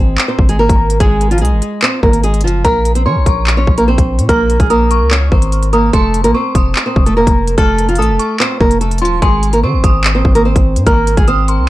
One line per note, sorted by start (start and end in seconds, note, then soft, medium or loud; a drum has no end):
0.00 0.17 G#1 loud
0.00 0.26 C4 medium
0.00 0.25 C5 medium
0.18 clap loud
0.28 0.46 C4 medium
0.28 0.46 C5 medium
0.39 0.68 G#1 loud
0.39 kick loud
0.49 0.58 G#3 medium
0.49 0.58 G#4 medium
0.49 closed hi-hat medium
0.59 0.98 A#3 medium
0.59 0.98 A#4 medium
0.69 0.99 G#1 loud
0.69 kick medium
0.69 closed hi-hat medium
0.90 closed hi-hat medium
1.00 1.43 G#1 loud
1.00 1.30 G#3 medium
1.00 1.29 G#4 loud
1.00 kick loud
1.00 closed hi-hat medium
1.21 closed hi-hat medium
1.31 1.40 F3 medium
1.31 1.40 F4 medium
1.31 closed hi-hat soft
1.38 1.53 C2 loud
1.38 1.80 G#4 medium
1.38 closed hi-hat medium
1.42 1.80 G#3 medium
1.42 closed hi-hat medium
1.52 1.61 G#1 loud
1.62 closed hi-hat medium
1.82 2.00 C4 medium
1.82 2.00 C5 medium
1.82 clap loud
2.03 2.46 G#1 loud
2.03 2.21 A#3 medium
2.03 2.20 A#4 medium
2.03 kick medium
2.13 closed hi-hat medium
2.24 2.42 G#3 medium
2.24 2.41 G#4 medium
2.24 closed hi-hat medium
2.34 closed hi-hat medium
2.41 2.64 F#1 loud
2.41 2.61 F4 medium
2.41 closed hi-hat medium
2.45 2.62 F3 medium
2.45 closed hi-hat medium
2.65 3.07 A#1 loud
2.65 2.94 A#3 medium
2.65 2.94 A#4 loud
2.65 3.03 A#5 loud
2.65 kick loud
2.65 closed hi-hat medium
2.85 closed hi-hat medium
2.95 3.05 C4 medium
2.95 3.04 C5 medium
2.95 closed hi-hat medium
3.06 3.17 F3 loud
3.06 3.54 C#4 medium
3.06 3.54 C#5 medium
3.06 3.25 C6 medium
3.16 3.26 A#1 loud
3.26 3.66 A#1 loud
3.26 3.84 C#6 medium
3.26 kick medium
3.26 closed hi-hat medium
3.47 clap loud
3.57 3.75 C#4 medium
3.57 3.74 C#5 medium
3.67 3.97 A#1 loud
3.67 kick medium
3.78 3.87 A#3 medium
3.78 3.86 A#4 medium
3.78 closed hi-hat medium
3.88 4.27 C4 medium
3.88 4.26 C5 medium
3.98 4.20 A#1 loud
3.98 kick medium
3.98 closed hi-hat medium
4.19 4.28 A#2 loud
4.19 closed hi-hat medium
4.29 4.59 A#1 loud
4.29 4.58 A#3 medium
4.29 4.58 A#4 loud
4.29 4.68 F6 medium
4.29 kick loud
4.29 closed hi-hat medium
4.50 closed hi-hat medium
4.60 5.02 A#1 loud
4.60 4.69 G#3 medium
4.60 4.69 G#4 medium
4.60 kick loud
4.60 closed hi-hat medium
4.70 5.09 A#3 medium
4.70 5.09 A#4 loud
4.70 4.90 D#6 medium
4.70 closed hi-hat medium
4.91 5.69 C#6 medium
4.91 closed hi-hat medium
5.01 5.30 C#2 loud
5.11 5.29 C#4 medium
5.11 5.29 C#5 medium
5.11 clap loud
5.32 5.91 G#1 loud
5.32 5.71 C4 medium
5.32 5.70 C5 medium
5.32 kick loud
5.42 closed hi-hat medium
5.52 closed hi-hat medium
5.63 closed hi-hat medium
5.73 5.91 A#3 medium
5.73 5.90 A#4 medium
5.73 5.93 D#6 medium
5.73 closed hi-hat soft
5.93 6.26 F1 loud
5.93 6.23 A3 medium
5.93 6.22 A4 medium
5.93 6.32 C6 loud
5.93 kick loud
5.93 closed hi-hat medium
6.14 closed hi-hat medium
6.24 6.34 A1 loud
6.24 6.33 A#3 medium
6.24 6.33 A#4 medium
6.24 closed hi-hat medium
6.34 6.83 C4 medium
6.34 6.83 C5 medium
6.34 6.54 C#6 medium
6.55 6.75 F1 loud
6.55 7.13 D#6 medium
6.55 kick medium
6.55 closed hi-hat medium
6.76 clap loud
6.86 7.04 C4 medium
6.86 7.03 C5 medium
6.96 7.26 F1 loud
6.96 kick loud
7.06 7.15 A3 medium
7.06 7.15 A4 medium
7.06 closed hi-hat medium
7.17 7.56 A#3 medium
7.17 7.55 A#4 medium
7.27 7.57 F1 loud
7.27 kick medium
7.27 closed hi-hat medium
7.47 closed hi-hat medium
7.58 8.00 F1 loud
7.58 7.87 A3 medium
7.58 7.87 A4 loud
7.58 7.96 F6 loud
7.58 kick loud
7.58 closed hi-hat medium
7.78 closed hi-hat medium
7.89 7.98 F3 medium
7.89 7.97 F4 medium
7.89 closed hi-hat soft
7.95 8.11 A1 loud
7.95 8.38 A4 medium
7.95 8.18 D#6 medium
7.95 closed hi-hat medium
8.00 8.38 A3 medium
8.00 closed hi-hat medium
8.09 8.19 F1 loud
8.19 8.39 C#6 medium
8.19 closed hi-hat medium
8.40 8.58 C4 medium
8.40 8.57 C5 medium
8.40 clap loud
8.61 9.03 F1 loud
8.61 8.78 A#3 medium
8.61 8.78 A#4 medium
8.61 kick medium
8.71 closed hi-hat medium
8.81 8.99 A3 medium
8.81 8.98 A4 medium
8.81 closed hi-hat medium
8.91 closed hi-hat medium
8.98 9.21 D#1 loud
8.98 9.19 F4 medium
8.98 9.21 C6 medium
8.98 closed hi-hat medium
9.02 9.19 F3 medium
9.02 closed hi-hat medium
9.22 9.65 G#1 loud
9.22 9.51 G#3 medium
9.22 9.51 G#4 loud
9.22 9.61 C6 loud
9.22 kick loud
9.22 closed hi-hat medium
9.43 closed hi-hat medium
9.53 9.62 A#3 medium
9.53 9.62 A#4 medium
9.53 closed hi-hat medium
9.63 9.75 D#3 loud
9.63 10.12 C4 medium
9.63 10.12 C5 medium
9.63 9.83 C#6 medium
9.74 9.83 G#1 loud
9.84 10.23 G#1 loud
9.84 10.42 D#6 medium
9.84 kick medium
9.84 closed hi-hat medium
10.04 clap loud
10.15 10.33 C4 medium
10.15 10.32 C5 medium
10.25 10.54 G#1 loud
10.25 kick medium
10.35 10.44 A#3 medium
10.35 10.44 A#4 medium
10.35 closed hi-hat medium
10.45 10.84 C4 medium
10.45 10.84 C5 medium
10.56 10.78 G#1 loud
10.56 kick loud
10.56 closed hi-hat medium
10.76 10.86 G#2 loud
10.76 closed hi-hat medium
10.87 11.16 G#1 loud
10.87 11.16 A#3 medium
10.87 11.16 A#4 loud
10.87 11.25 F6 medium
10.87 kick loud
10.87 closed hi-hat medium
11.07 closed hi-hat medium
11.17 11.60 G#1 loud
11.17 11.27 G#3 medium
11.17 11.26 G#4 medium
11.17 kick loud
11.17 closed hi-hat medium
11.28 11.67 C4 medium
11.28 11.66 C5 medium
11.28 11.47 D#6 medium
11.28 closed hi-hat medium
11.48 11.69 C6 medium
11.48 closed hi-hat medium
11.58 11.69 C2 medium